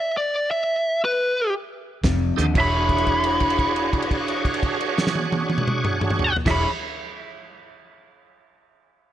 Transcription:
0.00 lead electric guitar E5
0.17 lead electric guitar D5
0.51 lead electric guitar E5
1.05 lead electric guitar B4
2.03 fingered electric bass F1, clean electric guitar F2 C3, kick, snare, closed hi-hat
2.36 fingered electric bass D#2, clean electric guitar F2 D3, tonewheel organ D#4 G4 A4 C5, closed hi-hat
2.54 fingered electric bass E1, clean electric guitar E3 D4 G#4, tonewheel organ D4 F#4 G#4 C#5, electric slide guitar E5, kick, crash
2.58 clean electric guitar C#5, lead electric guitar B5
2.89 kick, crash
2.98 crash
3.07 kick, crash
3.24 crash
3.40 kick, crash
3.50 crash
3.59 kick, crash
3.76 crash
3.93 kick, crash
4.02 crash
4.11 kick, crash
4.28 crash
4.45 kick, crash
4.54 crash
4.63 kick, crash
4.81 crash
4.98 snare
5.07 snare
5.15 high tom
5.32 high tom
5.50 high tom
5.58 mid tom
5.68 mid tom
5.85 mid tom
6.01 mid tom
6.10 mid tom
6.19 floor tom
6.36 floor tom
6.45 fingered electric bass E1, clean electric guitar E3 D4 G#4 C#5, tonewheel organ D4 F#4 G#4 C#5, electric slide guitar E5, kick, snare, crash
6.51 lead electric guitar B5

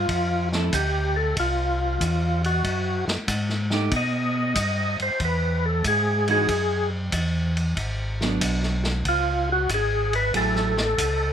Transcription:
Already playing: tonewheel organ F4
0.09 tonewheel organ F2, kick, ride
0.52 hollow-body jazz guitar F3 C4 E4 A4, snare
0.73 tonewheel organ D2 G4, kick, hi-hat pedal, ride
1.16 tonewheel organ A4
1.37 tonewheel organ C2 F4, kick, ride
2.00 tonewheel organ E2, kick, hi-hat pedal, ride
2.44 tonewheel organ F#4, ride
2.64 tonewheel organ F#2, kick, ride
3.07 tonewheel organ F#2, snare
3.27 tonewheel organ G#2, kick, hi-hat pedal, ride
3.49 snare
3.70 hollow-body jazz guitar A3 D#4 G4, snare
3.91 tonewheel organ B2, kick, ride
3.96 tonewheel organ D#5
4.55 tonewheel organ G2, kick, hi-hat pedal, ride
5.00 tonewheel organ G2 C5, ride
5.20 tonewheel organ E2, kick, ride
5.25 tonewheel organ B4
5.66 tonewheel organ A4
5.84 tonewheel organ G#2 G#4, kick, hi-hat pedal, ride
6.28 hollow-body jazz guitar E3 G#3 D#4 F#4, tonewheel organ G#4, ride
6.48 tonewheel organ F#2, kick, ride
7.12 tonewheel organ E2, kick, hi-hat pedal, ride
7.57 ride
7.77 tonewheel organ G#1, kick, ride
8.21 hollow-body jazz guitar F#3 B3 D4, snare
8.41 tonewheel organ B1, kick, hi-hat pedal, ride
8.63 snare
8.84 snare
9.05 tonewheel organ C#2 F4, kick, ride
9.52 tonewheel organ F#4
9.69 tonewheel organ G#1, kick, hi-hat pedal, ride
9.74 tonewheel organ G#4
10.13 tonewheel organ B4, ride
10.34 tonewheel organ A1 A4, hollow-body jazz guitar F#3 A3 E4 G#4, kick, ride
10.56 snare
10.77 snare
10.98 tonewheel organ C#2, kick, hi-hat pedal, ride

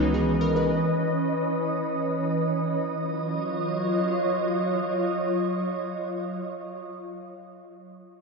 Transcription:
Already playing: synth keys C#2 D#3 E3 G#3 B3 D#4 F#4, ambient pad E3 C#4 B4 D#5
0.14 synth keys G#4
0.41 synth keys A#4
0.56 synth keys B4
2.84 ambient pad F#3 F4 C#5 D#5

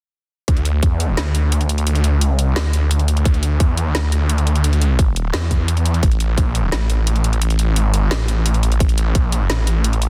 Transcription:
0.48 detuned saw bass D2, kick, closed hi-hat
0.57 closed hi-hat
0.65 closed hi-hat
0.83 detuned saw bass E2, kick, closed hi-hat
1.00 closed hi-hat
1.17 detuned saw bass D2, snare, closed hi-hat
1.35 closed hi-hat
1.52 closed hi-hat
1.61 closed hi-hat
1.69 closed hi-hat
1.78 closed hi-hat
1.87 closed hi-hat
1.95 closed hi-hat
2.04 closed hi-hat
2.14 detuned saw bass C#2
2.21 closed hi-hat
2.39 detuned saw bass C2, closed hi-hat
2.56 detuned saw bass D2, snare, closed hi-hat
2.73 closed hi-hat
2.91 closed hi-hat
2.99 closed hi-hat
3.08 closed hi-hat
3.17 closed hi-hat
3.25 detuned saw bass D2, kick, closed hi-hat
3.34 closed hi-hat
3.43 closed hi-hat
3.60 detuned saw bass E2, kick, closed hi-hat
3.77 closed hi-hat
3.95 detuned saw bass D2, snare, closed hi-hat
4.12 closed hi-hat
4.29 closed hi-hat
4.38 closed hi-hat
4.47 closed hi-hat
4.56 closed hi-hat
4.64 closed hi-hat
4.73 closed hi-hat
4.82 closed hi-hat
4.99 kick, closed hi-hat
5.16 closed hi-hat
5.33 detuned saw bass E2, snare, closed hi-hat
5.51 kick, closed hi-hat
5.68 closed hi-hat
5.77 closed hi-hat
5.86 closed hi-hat
5.94 closed hi-hat
6.03 detuned saw bass A1, kick, closed hi-hat
6.12 closed hi-hat
6.20 closed hi-hat
6.38 detuned saw bass A#1, kick, closed hi-hat
6.55 closed hi-hat
6.72 detuned saw bass A1, snare, closed hi-hat
6.90 closed hi-hat
7.07 closed hi-hat
7.16 closed hi-hat
7.24 closed hi-hat
7.33 closed hi-hat
7.42 closed hi-hat
7.50 closed hi-hat
7.59 closed hi-hat
7.69 detuned saw bass G#1
7.76 closed hi-hat
7.94 detuned saw bass G1, closed hi-hat
8.11 detuned saw bass A1, snare, closed hi-hat
8.28 closed hi-hat
8.46 closed hi-hat
8.54 closed hi-hat
8.63 closed hi-hat
8.72 closed hi-hat
8.80 detuned saw bass A1, kick, closed hi-hat
8.89 closed hi-hat
8.98 closed hi-hat
9.15 detuned saw bass A#1, kick, closed hi-hat
9.32 closed hi-hat
9.50 detuned saw bass A1, snare, closed hi-hat
9.67 closed hi-hat
9.84 closed hi-hat
9.93 closed hi-hat
10.02 closed hi-hat

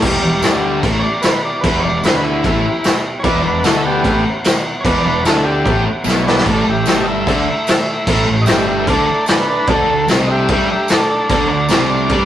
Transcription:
0.01 fingered electric bass E1, distorted electric guitar E2 E3, transistor combo organ G3 B3 E4 G4, kick, crash
0.21 fingered electric bass E1, distorted electric guitar E2
0.40 fingered electric bass D2, distorted electric guitar D3 D4, snare, tambourine, crash
0.82 fingered electric bass A1, distorted electric guitar A2 A3, kick, crash
0.99 transistor combo organ C#5
1.03 transistor combo organ D5
1.22 transistor combo organ B4, snare, tambourine, crash
1.45 transistor combo organ D5
1.61 fingered electric bass E1, distorted electric guitar E2 E3, transistor combo organ B4, kick, crash
1.80 fingered electric bass E1, transistor combo organ C#5 D5
1.86 distorted electric guitar E2
2.03 fingered electric bass D2, distorted electric guitar D3 D4, transistor combo organ B4, snare, tambourine, crash
2.24 transistor combo organ E4
2.44 fingered electric bass A1, distorted electric guitar A2 A3, kick, crash
2.84 snare, tambourine, crash
3.20 transistor combo organ B3 E4 B4 C#5
3.24 fingered electric bass E1, distorted electric guitar E2 E3, transistor combo organ D5 F#5, kick, crash
3.43 fingered electric bass E1, distorted electric guitar E2, transistor combo organ D4 B4
3.64 fingered electric bass D2, distorted electric guitar D3 D4, transistor combo organ E4 A4, snare, tambourine, crash
3.85 transistor combo organ B3 G4
4.04 fingered electric bass A1, distorted electric guitar A2 A3, kick, crash
4.44 snare, tambourine, crash
4.81 fingered electric bass E1, transistor combo organ C#5
4.85 distorted electric guitar E2 E3, transistor combo organ B4 D5, kick, crash
5.03 fingered electric bass E1, distorted electric guitar E2, transistor combo organ D4 B4
5.24 fingered electric bass D2, distorted electric guitar D3 D4, transistor combo organ E4 A4, snare, tambourine, crash
5.45 transistor combo organ G4
5.65 fingered electric bass A1, distorted electric guitar A2 A3, kick, crash
6.04 fingered electric bass B1, distorted electric guitar B2 B3, snare, tambourine
6.23 transistor combo organ C#5 D5
6.28 transistor combo organ B4, snare
6.38 snare
6.45 fingered electric bass A1, distorted electric guitar A2 A3, transistor combo organ A3 E4 A4 D5, kick, crash
6.65 fingered electric bass A1, distorted electric guitar A2
6.69 transistor combo organ G4 E5
6.86 fingered electric bass G1, distorted electric guitar G2 G3, transistor combo organ G4 E5, snare, tambourine, crash
7.03 transistor combo organ D#5
7.08 transistor combo organ E5
7.26 fingered electric bass D2, distorted electric guitar D3 D4, kick, crash
7.67 snare, tambourine, crash
8.06 fingered electric bass A1, distorted electric guitar A2 A3, kick, crash
8.28 fingered electric bass A1, distorted electric guitar A2
8.42 transistor combo organ D#5
8.46 fingered electric bass G1, distorted electric guitar G2 G3, transistor combo organ G4 E5, snare, tambourine, crash
8.68 transistor combo organ G4 E5
8.87 fingered electric bass D2, distorted electric guitar D3 D4, transistor combo organ A4 D5, kick, crash
9.06 transistor combo organ A4 D5
9.26 transistor combo organ D4 B4, snare, tambourine, crash
9.49 transistor combo organ D4 B4
9.67 fingered electric bass D2, distorted electric guitar D3 D4, transistor combo organ A3 D4 A4, kick, crash
9.86 fingered electric bass D2, distorted electric guitar D3
10.06 fingered electric bass C2, distorted electric guitar C3 C4, snare, tambourine, crash
10.27 transistor combo organ D#5
10.31 transistor combo organ G4 E5
10.48 fingered electric bass G2, distorted electric guitar G3 G4, transistor combo organ G4, kick, crash
10.53 transistor combo organ E5
10.71 transistor combo organ G4 E5
10.88 transistor combo organ A4 D5, snare, tambourine, crash
11.09 transistor combo organ A4 D5
11.29 fingered electric bass D2, distorted electric guitar D3 D4, transistor combo organ A4 D5, kick, crash
11.47 fingered electric bass D2, distorted electric guitar D3, transistor combo organ C#5
11.51 transistor combo organ D5
11.69 fingered electric bass C2, distorted electric guitar C3 C4, snare, tambourine, crash
12.09 fingered electric bass G2, distorted electric guitar G3 G4, kick, crash

